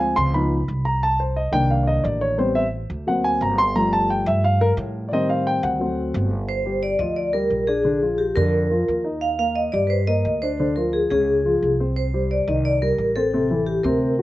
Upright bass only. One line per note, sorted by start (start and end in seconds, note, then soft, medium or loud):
0.00 0.11 D2 medium
0.17 0.65 C#2 loud
0.68 1.48 C2 medium
1.52 2.01 C2 loud
2.04 2.84 A1 loud
2.90 3.37 D2 loud
3.41 4.21 G1 loud
4.26 4.74 G2 loud
4.77 5.57 A2 loud
5.63 6.11 D2 loud
6.14 6.94 G1 loud
6.99 7.47 D2 medium
7.50 8.30 A#1 medium
8.36 8.84 F2 loud
8.88 9.68 D#2 medium
9.74 10.21 G2 medium
10.25 11.05 D2 medium
11.11 11.59 C#2 loud
11.62 12.42 C2 medium
12.47 12.95 C2 medium
12.98 13.79 A1 medium
13.84 14.22 D2 loud